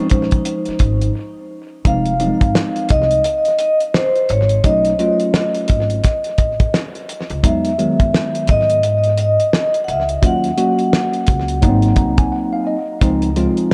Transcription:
Already playing: vibraphone C#4
0.10 upright bass A#1, tine electric piano E3 G#3 D#4 C5, kick, closed hi-hat
0.17 tine electric piano F3
0.31 kick, closed hi-hat
0.45 closed hi-hat
0.65 muted upright bass stroke, closed hi-hat
0.79 upright bass G#1, kick, closed hi-hat
1.01 closed hi-hat
1.85 upright bass F1, tine electric piano F3 G#3 C4 D#4, vibraphone F5, kick, closed hi-hat
2.06 closed hi-hat
2.20 tine electric piano F3 F#3 C4 D#4, closed hi-hat
2.27 tine electric piano G#3
2.41 upright bass G#1, kick, closed hi-hat
2.55 snare
2.76 closed hi-hat
2.89 upright bass C2, vibraphone D#5, kick, closed hi-hat
3.11 closed hi-hat
3.24 closed hi-hat
3.45 closed hi-hat
3.59 vibraphone D#5, closed hi-hat
3.80 closed hi-hat
3.94 vibraphone C5, snare
4.16 closed hi-hat
4.29 upright bass G#1, vibraphone C#5, closed hi-hat
4.49 closed hi-hat
4.64 upright bass B1, tine electric piano F#3 A3 C#4 D#4, vibraphone D#5, kick, closed hi-hat
4.85 closed hi-hat
4.99 tine electric piano F#3 A3 C#4 F4, closed hi-hat
5.20 closed hi-hat
5.34 snare
5.55 closed hi-hat
5.68 upright bass G#1, kick, closed hi-hat
5.90 closed hi-hat
6.04 kick, snare, closed hi-hat
6.24 closed hi-hat
6.38 upright bass A1, kick, closed hi-hat
6.60 kick, closed hi-hat
6.74 snare
6.95 closed hi-hat
7.09 closed hi-hat
7.30 upright bass C#2, closed hi-hat
7.43 upright bass E2, tine electric piano F#3 G#3 B3 D#4, vibraphone E5, kick, closed hi-hat
7.65 closed hi-hat
7.78 tine electric piano D#3 F#3 G#3 B3, closed hi-hat
8.00 upright bass F#2, kick, closed hi-hat
8.14 snare
8.35 closed hi-hat
8.47 upright bass G#2, vibraphone D#5, kick, closed hi-hat
8.70 closed hi-hat
8.83 closed hi-hat
9.04 closed hi-hat
9.18 vibraphone D#5, closed hi-hat
9.40 closed hi-hat
9.53 snare
9.74 closed hi-hat
9.84 vibraphone F#5
9.88 upright bass C#2, vibraphone E5, closed hi-hat
10.09 closed hi-hat
10.22 upright bass D#2, tine electric piano F#3 A#3 C#4 F4, vibraphone F#5, kick, closed hi-hat
10.44 closed hi-hat
10.57 tine electric piano F#3 A#3 C#4 F#4, closed hi-hat
10.79 closed hi-hat
10.93 snare
11.13 closed hi-hat
11.27 upright bass C#2, kick, closed hi-hat
11.48 closed hi-hat
11.62 upright bass G#1, tine electric piano F#3 A#3 B3 D#4, kick, closed hi-hat
11.69 tine electric piano C4
11.82 closed hi-hat
11.96 tine electric piano A#5, kick, closed hi-hat
12.18 tine electric piano G#5, kick, closed hi-hat
12.32 tine electric piano F#5
12.53 tine electric piano F5
12.67 tine electric piano D#5
13.01 upright bass C#2, tine electric piano F3 G#3 C4 D#4, kick, closed hi-hat
13.22 closed hi-hat
13.36 tine electric piano F3 G#3 C4 F4, closed hi-hat
13.57 closed hi-hat

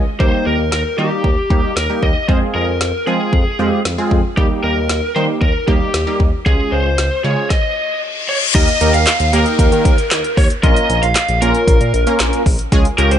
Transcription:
0.20 analog synth bass D#2, analog polysynth G3 A#3 D#4 G4, lead electric guitar C5, kick
0.46 analog synth bass D#2, lead electric guitar A#4
0.59 analog synth bass D#2
0.72 analog synth bass D#2, lead electric guitar A#4, snare
0.98 analog synth bass D#3, analog polysynth G3 A#3 D#4 G4, lead electric guitar G4
1.24 analog synth bass D#2, kick
1.50 analog synth bass D#2, analog polysynth G3 A#3 D#4 G4, kick
1.77 analog synth bass D#2, lead electric guitar A#4, snare
1.90 analog polysynth G3 A#3 D#4 G4
2.03 analog synth bass D#2, lead electric guitar D#5, kick
2.29 analog synth bass F2, analog polysynth G#3 C4 F4 G#4, lead electric guitar C5, kick
2.55 analog synth bass F2, lead electric guitar A#4
2.68 analog synth bass F2
2.81 analog synth bass F2, snare
3.07 analog synth bass F3, analog polysynth G#3 C4 F4 G#4, lead electric guitar G#4
3.33 analog synth bass F2, kick
3.59 analog synth bass F2, analog polysynth G#3 C4 F4 G4
3.85 analog synth bass F2, snare
3.98 analog polysynth G#3 C4 F4 G#4
4.11 analog synth bass F2, kick
4.37 analog synth bass D#2, analog polysynth G3 A#3 D#4 G4, lead electric guitar G4, kick
4.63 analog synth bass D#2, lead electric guitar A#4
4.77 analog synth bass D#2
4.89 analog synth bass D#2, snare
5.16 analog synth bass D#3, analog polysynth G3 A#3 D#4 G4, lead electric guitar C5
5.41 analog synth bass D#2, lead electric guitar A#4, kick
5.68 analog synth bass D#2, analog polysynth G3 A#3 D#4 G4, lead electric guitar G4, kick
5.94 analog synth bass D#2, snare
6.07 analog polysynth G3 A#3 D#4 G4
6.20 analog synth bass D#2, kick
6.46 analog synth bass C#2, analog polysynth G#3 C#4 F4 G#4, lead electric guitar G#4, kick
6.72 analog synth bass C#2, lead electric guitar C5
6.85 analog synth bass C#2
6.98 analog synth bass C#2, snare
7.24 analog synth bass C#3, analog polysynth G#3 C#4 F4 G#4, lead electric guitar C#5
7.50 lead electric guitar D#5, kick, snare, reverse cymbal
8.29 lead electric guitar C#5
8.55 analog synth bass D#2, analog polysynth A#3 D#4 G4 A#4, lead electric guitar D#5, kick, closed hi-hat, crash, downlifter
8.68 closed hi-hat
8.81 analog synth bass D#2, analog polysynth A#3 D#4 G4 A#4, closed hi-hat
8.94 analog synth bass D#2, lead electric guitar F5, closed hi-hat
9.07 snare, clap, closed hi-hat
9.20 analog synth bass D#2, closed hi-hat
9.33 analog synth bass D#2, analog polysynth A#3 D#4 G4 A#4, lead electric guitar A#4, closed hi-hat
9.46 closed hi-hat
9.59 analog synth bass D#2, kick, closed hi-hat
9.72 analog synth bass D#3, closed hi-hat
9.85 analog synth bass D#2, kick, closed hi-hat
9.98 closed hi-hat
10.11 analog synth bass D#2, snare, clap, closed hi-hat
10.24 closed hi-hat
10.37 analog synth bass D#2, lead electric guitar C#5, kick, open hi-hat
10.50 closed hi-hat
10.63 analog synth bass A#1, analog polysynth A#3 C#4 F4 A#4, lead electric guitar D#5, kick, closed hi-hat
10.76 closed hi-hat
10.90 analog synth bass A#1, closed hi-hat
11.03 analog synth bass A#1, lead electric guitar F5, closed hi-hat
11.16 snare, clap, closed hi-hat
11.28 analog synth bass A#1, closed hi-hat
11.42 analog synth bass A#1, analog polysynth A#3 C#4 F4 A#4, lead electric guitar A#4, closed hi-hat
11.55 closed hi-hat
11.68 analog synth bass A#1, kick, closed hi-hat
11.81 analog synth bass A#2, closed hi-hat
11.94 analog synth bass A#1, closed hi-hat
12.07 analog polysynth A#3 C#4 F4 A#4, closed hi-hat
12.20 analog synth bass A#1, snare, clap, closed hi-hat
12.33 closed hi-hat
12.46 analog synth bass A#1, kick, open hi-hat
12.59 closed hi-hat
12.72 analog synth bass C#2, analog polysynth G#3 C#4 F4 G#4, kick, closed hi-hat
12.85 closed hi-hat
12.98 analog synth bass C#2, analog polysynth G#3 C#4 F4 G4, lead electric guitar A#4, closed hi-hat
13.11 analog synth bass C#2, lead electric guitar C5, closed hi-hat

